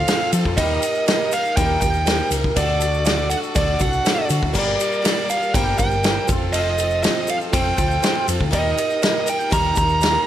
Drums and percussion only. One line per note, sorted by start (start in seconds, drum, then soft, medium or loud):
0.08 snare loud
0.08 ride loud
0.08 shaker medium
0.33 ride medium
0.33 shaker loud
0.45 kick medium
0.57 kick loud
0.57 ride loud
0.57 shaker medium
0.82 ride medium
0.82 shaker medium
0.94 shaker soft
1.07 snare loud
1.07 ride loud
1.07 shaker medium
1.32 ride medium
1.32 shaker medium
1.45 shaker soft
1.57 kick loud
1.57 ride medium
1.57 shaker medium
1.81 kick medium
1.81 ride medium
1.81 shaker medium
1.94 shaker soft
2.07 snare loud
2.07 ride medium
2.07 shaker medium
2.31 ride medium
2.31 shaker loud
2.44 kick medium
2.56 kick loud
2.56 ride medium
2.56 shaker medium
2.81 ride medium
2.81 shaker loud
2.94 shaker soft
3.05 snare loud
3.05 ride medium
3.05 shaker medium
3.30 ride medium
3.30 shaker medium
3.43 shaker soft
3.55 kick loud
3.55 ride loud
3.55 shaker medium
3.79 kick medium
3.79 ride medium
3.79 shaker medium
3.93 shaker soft
4.05 snare loud
4.05 ride loud
4.05 shaker medium
4.29 ride medium
4.29 shaker loud
4.43 kick medium
4.54 kick medium
4.54 crash loud
4.54 shaker medium
4.80 ride medium
4.80 shaker medium
4.92 shaker soft
5.05 snare loud
5.05 ride loud
5.05 shaker medium
5.30 ride medium
5.30 shaker medium
5.42 shaker soft
5.54 kick loud
5.54 ride medium
5.54 shaker medium
5.78 kick medium
5.78 ride medium
5.78 shaker medium
5.91 shaker soft
6.04 snare loud
6.04 ride medium
6.04 shaker medium
6.28 kick loud
6.28 ride medium
6.28 shaker medium
6.53 ride medium
6.53 shaker medium
6.78 ride medium
6.78 shaker medium
6.90 shaker soft
7.03 snare loud
7.03 ride medium
7.03 shaker medium
7.27 ride medium
7.27 shaker medium
7.41 shaker soft
7.53 kick loud
7.53 ride loud
7.53 shaker medium
7.78 kick medium
7.78 ride medium
7.78 shaker medium
7.91 shaker soft
8.03 snare loud
8.03 ride medium
8.03 shaker medium
8.28 ride medium
8.28 shaker loud
8.41 kick medium
8.53 kick medium
8.53 ride loud
8.53 shaker medium
8.78 ride medium
8.78 shaker loud
8.90 shaker soft
9.02 snare loud
9.02 ride loud
9.02 shaker medium
9.27 ride medium
9.27 shaker loud
9.40 shaker soft
9.52 kick loud
9.52 ride loud
9.52 shaker medium
9.76 kick medium
9.76 ride medium
9.76 shaker medium
9.89 shaker soft
10.01 snare loud
10.01 ride loud
10.01 shaker medium